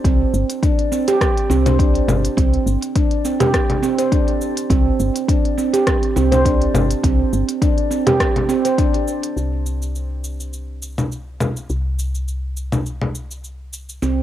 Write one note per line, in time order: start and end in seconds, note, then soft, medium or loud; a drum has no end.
0.04 0.25 C2 loud
0.04 0.62 C4 loud
0.04 kick loud
0.04 closed hi-hat medium
0.04 shaker soft
0.34 0.44 G1 loud
0.34 shaker medium
0.50 closed hi-hat soft
0.50 shaker soft
0.63 0.78 D4 medium
0.63 kick loud
0.63 closed hi-hat soft
0.63 shaker soft
0.79 closed hi-hat soft
0.92 1.01 C4 medium
0.92 shaker medium
1.08 1.49 G4 loud
1.08 closed hi-hat soft
1.08 shaker soft
1.21 kick loud
1.21 cross-stick medium
1.21 closed hi-hat medium
1.21 shaker soft
1.38 closed hi-hat soft
1.50 2.01 C2 medium
1.50 1.64 C4 loud
1.50 shaker medium
1.66 1.78 C5 medium
1.66 closed hi-hat soft
1.66 low conga medium
1.66 shaker soft
1.79 1.94 D4 medium
1.79 kick loud
1.79 closed hi-hat medium
1.79 shaker soft
1.95 closed hi-hat soft
2.08 2.28 G1 medium
2.08 low conga medium
2.08 shaker medium
2.25 closed hi-hat soft
2.25 shaker soft
2.37 2.58 C2 loud
2.37 2.94 C4 loud
2.37 kick loud
2.37 closed hi-hat medium
2.37 shaker soft
2.53 closed hi-hat soft
2.66 2.77 G1 loud
2.66 shaker medium
2.82 closed hi-hat soft
2.82 shaker soft
2.96 3.11 D4 medium
2.96 kick loud
2.96 closed hi-hat medium
2.96 shaker soft
3.11 closed hi-hat soft
3.25 3.34 C4 medium
3.25 shaker medium
3.40 3.82 G4 loud
3.40 closed hi-hat soft
3.40 low conga medium
3.40 shaker soft
3.54 kick loud
3.54 cross-stick medium
3.54 closed hi-hat medium
3.54 shaker soft
3.70 closed hi-hat soft
3.70 low conga medium
3.83 3.97 C4 loud
3.83 shaker medium
3.99 4.11 C5 medium
3.99 closed hi-hat soft
3.99 shaker soft
4.12 4.27 D4 medium
4.12 kick loud
4.12 closed hi-hat medium
4.12 shaker soft
4.28 closed hi-hat soft
4.41 shaker medium
4.57 closed hi-hat soft
4.57 shaker soft
4.70 4.91 C2 loud
4.70 5.27 C4 loud
4.70 kick loud
4.70 closed hi-hat medium
4.70 shaker soft
5.00 5.10 G1 loud
5.00 shaker medium
5.16 closed hi-hat soft
5.16 shaker soft
5.28 5.44 D4 medium
5.28 kick loud
5.28 closed hi-hat medium
5.28 shaker soft
5.45 closed hi-hat soft
5.58 5.67 C4 medium
5.58 shaker medium
5.73 6.15 G4 loud
5.73 closed hi-hat soft
5.73 shaker soft
5.87 kick loud
5.87 cross-stick medium
5.87 closed hi-hat medium
5.87 shaker soft
6.03 closed hi-hat soft
6.16 6.67 C2 medium
6.16 6.30 C4 loud
6.16 shaker medium
6.32 6.44 C5 medium
6.32 closed hi-hat soft
6.32 low conga medium
6.32 shaker soft
6.45 6.60 D4 medium
6.45 kick medium
6.45 closed hi-hat medium
6.45 shaker soft
6.61 closed hi-hat soft
6.74 6.95 G1 medium
6.74 low conga medium
6.74 shaker medium
6.91 closed hi-hat soft
6.91 shaker soft
7.04 7.24 C2 loud
7.04 7.60 C4 loud
7.04 kick medium
7.04 closed hi-hat medium
7.04 shaker soft
7.33 7.43 G1 loud
7.33 shaker medium
7.49 closed hi-hat soft
7.49 shaker soft
7.62 7.77 D4 medium
7.62 kick loud
7.62 closed hi-hat medium
7.62 shaker soft
7.78 closed hi-hat soft
7.91 8.00 C4 medium
7.91 shaker medium
8.07 8.48 G4 loud
8.07 closed hi-hat medium
8.07 low conga medium
8.07 shaker soft
8.20 kick loud
8.20 cross-stick medium
8.20 closed hi-hat medium
8.20 shaker soft
8.36 closed hi-hat soft
8.36 low conga medium
8.49 8.63 C4 loud
8.49 shaker medium
8.65 8.77 C5 medium
8.65 closed hi-hat soft
8.65 shaker soft
8.78 8.93 D4 medium
8.78 kick loud
8.78 closed hi-hat medium
8.78 shaker soft
8.94 closed hi-hat soft
9.08 shaker medium
9.23 closed hi-hat soft
9.23 shaker soft
9.37 11.67 C2 medium
9.37 shaker soft
9.66 shaker medium
9.82 shaker soft
9.95 shaker soft
10.24 shaker medium
10.40 shaker soft
10.53 shaker soft
10.82 shaker medium
10.98 low conga medium
10.98 shaker soft
11.12 shaker soft
11.40 low conga medium
11.40 shaker medium
11.57 shaker soft
11.70 14.00 C2 medium
11.70 shaker soft
11.99 shaker medium
12.15 shaker soft
12.28 shaker soft
12.57 shaker medium
12.72 low conga medium
12.72 shaker soft
12.86 shaker soft
13.01 low conga medium
13.15 shaker medium
13.31 shaker soft
13.44 shaker soft
13.73 shaker medium
13.89 shaker soft
14.02 14.23 C2 medium
14.02 14.23 C4 medium
14.02 shaker soft